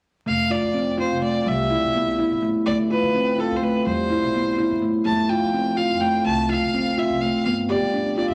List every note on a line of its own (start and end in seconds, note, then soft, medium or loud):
0.26 0.54 F1 medium
0.26 0.39 A3 medium
0.26 0.53 F5 medium
0.50 0.63 F4 medium
0.50 0.99 D5 medium
0.63 0.99 F2 medium
0.74 0.87 C4 medium
0.97 1.10 F4 medium
0.97 1.21 C5 medium
1.11 1.38 F1 medium
1.22 1.34 A3 medium
1.22 1.49 D5 medium
1.46 1.74 C2 medium
1.46 1.59 G3 medium
1.46 2.43 E5 medium
1.70 1.83 E4 medium
1.83 2.19 B1 medium
1.94 2.07 B3 medium
2.19 2.31 E4 medium
2.31 2.49 A1 medium
2.42 2.55 A3 medium
2.66 2.94 D2 medium
2.66 2.79 A3 medium
2.66 2.77 D5 medium
2.90 3.03 F4 medium
2.90 3.41 B4 medium
3.02 3.39 D3 medium
3.15 3.27 C4 medium
3.38 3.51 F4 medium
3.38 3.58 A4 medium
3.51 3.78 D2 medium
3.56 3.65 C5 soft
3.63 3.75 A3 medium
3.63 3.86 B4 medium
3.86 4.14 E2 medium
3.86 3.99 G3 medium
3.86 4.78 C5 medium
4.10 4.23 E4 medium
4.23 4.59 B1 medium
4.34 4.47 B3 soft
4.58 4.71 E4 medium
4.71 4.89 G2 medium
4.82 4.95 A3 medium
5.05 5.34 F2 medium
5.05 5.18 A3 medium
5.05 5.31 A5 medium
5.29 5.42 F4 medium
5.29 5.78 G5 medium
5.43 5.79 F3 medium
5.54 5.66 C4 medium
5.77 5.90 F4 medium
5.77 6.02 F5 medium
5.91 6.18 F2 medium
6.00 6.14 A3 medium
6.00 6.25 G5 medium
6.25 6.54 C2 medium
6.25 6.38 A3 medium
6.25 6.48 A5 medium
6.49 6.62 F4 medium
6.49 7.00 F5 medium
6.62 6.98 D2 medium
6.74 6.86 C4 medium
6.98 7.10 F4 medium
6.98 7.23 E5 medium
7.10 7.28 C2 medium
7.21 7.34 A3 medium
7.21 7.44 F5 medium
7.45 7.73 G2 medium
7.45 7.58 B3 medium
7.45 7.56 F5 medium
7.69 7.82 G4 medium
7.69 8.14 D5 medium
7.81 8.18 G3 medium
7.94 8.06 D4 medium
8.17 8.30 F4 medium
8.17 8.29 D5 medium
8.29 8.34 G2 medium
8.29 8.34 E5 medium